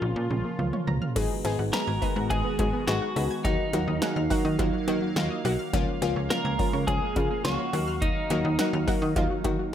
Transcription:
Already playing: C#3 F3 A#3 F4
0.02 A#1, high tom
0.16 A#2
0.30 A#1 C#3, mid tom
0.45 A#3
0.59 C#2 F4, mid tom
0.73 C#5, mid tom
0.87 C#2 A#5, floor tom
1.02 F6, floor tom
1.16 G#1 D#3 F#3 G#3 B3 D#4 F#4 G#4, kick, closed hi-hat, crash
1.45 G#1 G#3 B3 D#4 G#4, closed hi-hat
1.59 G#1 F#5
1.73 G#3 B3 D#4 G#4 A#4 B5, snare, closed hi-hat
1.87 G#1 G#6
2.02 G#3 B3 D#4 G#4 B5, kick, open hi-hat
2.16 G#2 F#5
2.30 G#1 G#3 B3 D#4 G#4, kick, closed hi-hat
2.45 B3
2.59 G#2 F#3 G#3 B3 D#4 G#4, kick, closed hi-hat
2.73 B3
2.87 G#1 G#3 B3 D#4 F#4 G#4, snare, closed hi-hat
3.02 F#5
3.16 C#2 G#3 B3 D#4 G#4 B5, open hi-hat
3.31 G#6
3.45 D#2 D#3 F#3 A#3 D#4 F#4 F5, kick, closed hi-hat
3.73 D#2 F#3 A#3 D#4 F4 F#4, closed hi-hat
3.88 D#2 D#5
4.02 F#3 A#3 D#4 G#4 F#5, snare, closed hi-hat
4.16 D#2 F6
4.30 F#3 A#3 D#4 F#4 F#5, kick, open hi-hat
4.45 D#3 D#5
4.59 D#2 F#3 A#3 D#4 F4 F#4, kick, closed hi-hat
4.73 F#3
4.88 D#3 F#3 A#3 D#4 F#4, closed hi-hat
5.02 F#3
5.16 D#2 F#3 A#3 D#4 F4, snare, closed hi-hat
5.30 D#5
5.45 B1 F#3 A#3 D#4 F#4 F#5, open hi-hat
5.59 F6
5.73 C#2 C#3 F3 G#3 A#3 C#4 F4, kick, closed hi-hat
6.02 C#2 F3 A#3 C#4 F4 G#4, closed hi-hat
6.16 C#2 C#5
6.30 F3 A#3 C#4 F4 A#4 A#5, snare, closed hi-hat
6.45 C#2 G#6
6.59 F3 A#3 C#4 F4 A#5, kick, open hi-hat
6.73 C#3 C#5
6.87 C#2 F3 A#3 C#4 G#4, kick, closed hi-hat
7.02 A#3
7.16 C#3 F3 A#3 C#4 F4, kick, closed hi-hat
7.30 A#3
7.45 C#2 F3 A#3 C#4 F4 F#4 G#4, snare, closed hi-hat
7.59 C#5
7.73 D#2 D#3 F#3 A#3 D#4 F#4 F#5, open hi-hat
7.88 F6
8.02 D#3 D#4, kick, closed hi-hat
8.30 D#2 F#3 A#3 D#4 F4 F#4, closed hi-hat
8.45 D#2 D#5
8.59 F#3 A#3 D#4 F#4 F#5, snare, closed hi-hat
8.73 D#2 F6
8.88 F#3 A#3 D#4 F#4 F#5, kick, open hi-hat
9.02 D#3 D#5
9.16 D#2 F#3 A#3 D#4 F4, kick, closed hi-hat
9.30 F#3
9.44 D#3 F#3 A#3 D#4 F#4, kick, closed hi-hat
9.59 F#3

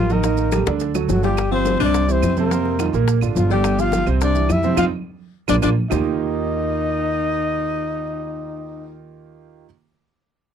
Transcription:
Already playing: A1 F3 F4
0.10 D#3 A#3 D#4 A#4 D#5, high bongo, high conga, maracas
0.23 D#3 D#4 D#5, high bongo, high conga, maracas
0.37 high bongo, high conga, maracas
0.52 G3 G4 A4, high bongo, high conga, claves, maracas
0.66 D2 D3 D4 D5, high bongo, high conga, maracas
0.80 high bongo, high conga, maracas
0.95 F#3 F#4 A4, low bongo, high conga, claves, maracas
1.08 G1 F#3 F#4 A4, low bongo, high conga, maracas
1.23 F3 G3 F4 G4, low bongo, high conga, maracas
1.37 high bongo, claves, maracas
1.51 F3 C4 F4 G4 C5, high bongo, high conga
1.65 high bongo, high conga, maracas
1.79 C2 C3 C4 D4 C5, high conga, claves, maracas
1.84 D5
1.94 high bongo, high conga, maracas
2.08 E3 C4 E4 G4 C5, high bongo, high conga, maracas
2.22 F2, high bongo, low bongo, high conga, claves, maracas
2.37 C3 A#3 C4 A#4 C5, high bongo, high conga, maracas
2.51 C3 C4 C5, high bongo, high conga, maracas
2.65 high bongo, high conga
2.79 D#3 D#4 F4, high bongo, high conga, claves, maracas
2.93 A#1 A#2 A#3 A#4, high conga, maracas
3.08 high bongo, high conga, maracas
3.21 G#1 D3 D4 F4, high bongo, high conga, claves, maracas
3.35 G1 F3 F4, high bongo, low bongo, high conga, maracas
3.50 D3 G3 D4 G4 D5, high bongo, high conga, maracas
3.64 high bongo, high conga, claves, maracas
3.78 F3 F4 G4 F5, high bongo, maracas
3.92 high bongo, high conga, maracas
4.06 C2 C3 C4 C5, high conga, claves, maracas
4.20 D4 D5, high bongo, high conga, maracas
4.34 E3 E4 G4, high bongo, high conga, maracas
4.49 F2 E4 E5, high bongo, low bongo, high conga, claves, maracas
4.63 C3 C4 C5, high bongo, high conga, maracas
4.77 F2 C4 D#4 F4 F5, low bongo, high conga, claves, maracas
5.48 A#1 A#3 D4 F4 D5, low bongo, high conga, claves, maracas
5.62 A#1 A#3 D4 F4 D5, low bongo, high conga, claves, maracas
5.90 D#2 D#3 A#3 D#4 F4 G4 D#5, low bongo, low conga, claves, maracas

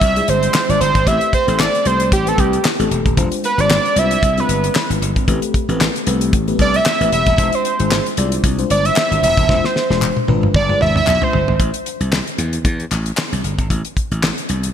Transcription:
Already playing: E5
0.01 C2, kick, closed hi-hat
0.16 G#3 D4 F4 G#4, closed hi-hat
0.28 G1 C5, closed hi-hat
0.43 closed hi-hat
0.54 snare, clap
0.68 G#1 G#3 D4 F4 C5 D5, closed hi-hat
0.80 G1 C5, closed hi-hat
0.95 G#1, kick, closed hi-hat
1.06 A1 A3 C4 G4 B4 E5, kick, closed hi-hat
1.21 closed hi-hat
1.33 C5, kick, closed hi-hat
1.47 A1 A3 C4 G4 A4, closed hi-hat
1.59 D5, snare, clap
1.75 closed hi-hat
1.85 C2 A3 C4 G4 B4 C5, closed hi-hat
2.00 closed hi-hat
2.12 A1 G4, kick, closed hi-hat
2.26 A3 C4 G4 A4 B4, closed hi-hat
2.38 C2 G4, kick, closed hi-hat
2.53 closed hi-hat
2.65 snare, clap
2.79 A1 A3 C4 G4 A4, closed hi-hat
2.91 E1, closed hi-hat
3.06 D#1, kick, closed hi-hat
3.17 E1 G#3 D4 F4 C5, kick, closed hi-hat
3.32 closed hi-hat
3.44 B4, closed hi-hat
3.58 G#1 G#3 D4 F4 C5 D5, closed hi-hat
3.70 snare, clap
3.85 closed hi-hat
3.95 C2 G#3 D4 F4 C5 E5, closed hi-hat
4.11 closed hi-hat
4.23 C2, kick, closed hi-hat
4.37 G#3 C4 D4 F4 B4, closed hi-hat
4.49 G1, closed hi-hat
4.64 closed hi-hat
4.75 snare, clap
4.90 G#1 G#3 D4 F4 B4, closed hi-hat
5.02 G1, closed hi-hat
5.16 G#1, kick, closed hi-hat
5.28 A1 A3 C4 G4 B4, kick, closed hi-hat
5.42 closed hi-hat
5.54 kick, closed hi-hat
5.69 A1 A3 C4 G4 B4, closed hi-hat
5.81 snare, clap
5.96 closed hi-hat
6.07 C2 A3 C4 G4 B4, closed hi-hat
6.21 closed hi-hat
6.33 A1, kick, closed hi-hat
6.48 A3 B3 G4 B4, closed hi-hat
6.54 C4
6.59 C2 D5, kick, closed hi-hat
6.74 E5, closed hi-hat
6.86 snare, clap
7.00 A1 A3 C4 G4 B4, closed hi-hat
7.12 E1 E5, closed hi-hat
7.26 D#1, kick, closed hi-hat
7.38 E1 G#3 D4 F4 C5, kick, closed hi-hat
7.53 C5, closed hi-hat
7.65 closed hi-hat
7.79 G#1 G#3 D4 F4 G#4, closed hi-hat
7.91 snare, clap
8.06 closed hi-hat
8.17 C2 G#3 D4 F4 D5, closed hi-hat
8.32 closed hi-hat
8.44 C2, kick, closed hi-hat
8.58 G#3 D4 F4 C5, closed hi-hat
8.70 G1 D5, closed hi-hat
8.85 E5, closed hi-hat
8.96 snare, clap
9.11 G#1 G#3 D4 F4 C5, closed hi-hat
9.23 E1 E5, closed hi-hat
9.37 D#1, kick, closed hi-hat
9.49 E1 G#3 D4 F4 C5, kick, snare
9.64 C5, snare
9.76 snare
9.90 E1 G#3 D4 F4 C5, snare
10.02 clap, high tom
10.17 high tom
10.27 G#1 G#3 D4 F4 B4, high tom
10.43 mid tom
10.54 G1 D5, kick, mid tom
10.69 G#3 D4 F4 C5, mid tom
10.80 G#1 E5, mid tom
10.96 E5, mid tom
11.07 B1 E5, clap, mid tom
11.21 G#3 D4 F4 C5, floor tom
11.33 G1, floor tom
11.48 G#1, floor tom
11.60 A1, kick, closed hi-hat
11.74 closed hi-hat
11.86 closed hi-hat
12.00 C2, closed hi-hat
12.12 snare, clap
12.27 closed hi-hat
12.38 E2, closed hi-hat
12.53 closed hi-hat
12.65 E2, kick, closed hi-hat
12.80 closed hi-hat
12.91 A1, clap, closed hi-hat
13.06 closed hi-hat
13.17 snare, clap
13.32 C2, closed hi-hat
13.44 G1, closed hi-hat
13.59 G#1, kick, closed hi-hat
13.70 A1, kick, closed hi-hat
13.85 closed hi-hat
13.97 kick, closed hi-hat
14.11 A1, closed hi-hat
14.23 snare, clap
14.38 closed hi-hat
14.49 C2, closed hi-hat
14.63 closed hi-hat

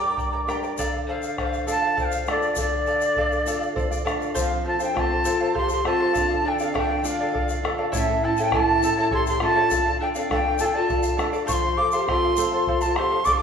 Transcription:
Already playing: G2 D4 G4 A#4 A#5 D6
0.01 A#4 D5 A#5
0.17 A#4 D5 G5 A#5, bombo low, shaker
0.33 A#4 D5 A#5, bombo rim
0.47 D4 G4 A#4 D5 G5 A#5, bombo rim, shaker
0.63 A#4 D5 A#5, shaker
0.78 D3 A4 D5 F5, bombo rim, bombo low, shaker
0.93 D5 F5
1.07 A4 C5 D5 F5, bombo rim
1.23 D5 F5, bombo rim, shaker
1.38 A4 C5 D5 F5, bombo rim, bombo low
1.53 D5 F5, shaker
1.67 D4 F4 A4 D5 F5, shaker
1.71 A5
1.82 D5 F5
1.97 A4 C5 D5 F5 G5, bombo low, shaker
2.05 F5
2.11 D5 F5, bombo rim, shaker
2.26 D4 F4 A4 D5 F5, bombo rim, shaker
2.42 D5 F5, shaker
2.56 D3 A4 D5 F5, bombo low, shaker
2.61 D5
2.73 D5 F5
2.86 A4 D5 F5, bombo rim, shaker
3.01 D5 F5, shaker
3.17 A4 D5 F5, bombo low
3.31 D5 F5, shaker
3.46 D4 F4 A4 D5 F5, bombo rim, shaker
3.61 D5 F5, bombo rim, shaker
3.76 A4 C5 D5 F5, bombo low, shaker
3.90 D5 F5, shaker
4.05 D4 F4 A4 D5 F5, bombo rim, shaker
4.20 D5 F5, shaker
4.34 F3 A4 C5 F5, bombo rim, bombo low, shaker
4.39 C4 F5
4.49 C5 F5
4.64 F4 A4 C5 F5 A5
4.80 D4 A4 C5 F5 G5, shaker
4.94 C4 F4 A4 C5 F5, bombo rim, bombo low
4.99 A5
5.10 C5 F5
5.25 C4 F4 A4 C5 F5, shaker
5.40 A4 C5 F5
5.54 G4 A4 C5 F5 C6, bombo low
5.69 G4 C5 F5, bombo rim, shaker
5.73 C6
5.85 C4 F4 A4 C5 F5 A5, bombo rim
6.00 A4 C5 F5, bombo rim
6.13 D3 A4 D5 F5, bombo rim, bombo low, shaker
6.28 D5 F5
6.45 D4 A4 D5 F5 G5
6.59 C4 A4 D5 F5, shaker
6.64 F5
6.74 D4 F4 A4 D5 F5, bombo rim, bombo low
6.78 G5
6.88 D5 F5
7.03 D4 F4 A4 D5 F5, shaker
7.20 A4 D5 F5
7.33 A4 D5 F5, bombo low
7.49 D5 F5, bombo rim, shaker
7.63 D4 F4 A4 D5 F5, bombo rim
7.78 A4 D5 F5, bombo rim
7.92 A2 C#4 E4 A4 C#5 E5 F5 A5, bombo rim, bombo low, shaker
7.98 E5
8.08 E4 A4 A5
8.23 E4 A4 E5 A5
8.36 C#4 E4 A4 A5, shaker
8.40 C#5 E5 G5
8.52 C#4 E4 A4 E5 A5, bombo rim, bombo low
8.69 E4 A4 A5
8.83 C#4 E4 A4 E5 A5, shaker
8.97 E4 A4 C#5 E5 A5
9.11 E4 G4 A4 C#5 E5 A5 C6, bombo low
9.26 E4 G4 A4 A5 C6, bombo rim, shaker
9.40 C#4 E4 F4 A4 E5 A5, bombo rim
9.56 E4 A4 C#5 E5 A5, bombo rim
9.70 D3 A4 D5 F5, bombo rim, bombo low, shaker
9.85 D5 F5
10.00 D4 A4 D5 F5 G5
10.14 C4 A4 D5 F5, bombo rim, shaker
10.29 D4 F4 A4 D5 F5, bombo rim, bombo low
10.33 G5
10.46 D5 F5, bombo rim
10.59 D4 F4 A4 D5 F5 A5, shaker
10.65 D4 G5
10.74 F4 A4 D5 F5 A5
10.88 A4 D5 F5, bombo rim, bombo low, shaker
11.03 D5 F5, bombo rim, shaker
11.17 D4 F4 A4 D5 F5, bombo rim, shaker
11.33 A4 D5 F5, shaker
11.46 F3 F4 A4 C5 F5 C#6, bombo rim, bombo low, shaker
11.53 C6
11.62 C5 F5
11.77 A4 C5 F5 D6
11.91 G4 A4 C5 F5 C6, shaker
12.06 C4 F4 A4 C5 F5 C6, bombo rim, bombo low
12.10 F4
12.24 C5 F5
12.37 C4 F4 A4 C5 F5, shaker
12.53 A4 C5 F5
12.67 A4 C5 F5, bombo low
12.81 F4 C5 F5 A5, bombo rim, shaker
12.96 C4 F4 G4 A4 C5 F5 C6, bombo rim
13.12 A4 C5 F5, bombo rim
13.25 D3 A4 D5 F5 D6, bombo rim, bombo low, shaker
13.32 G4 C6
13.37 D6

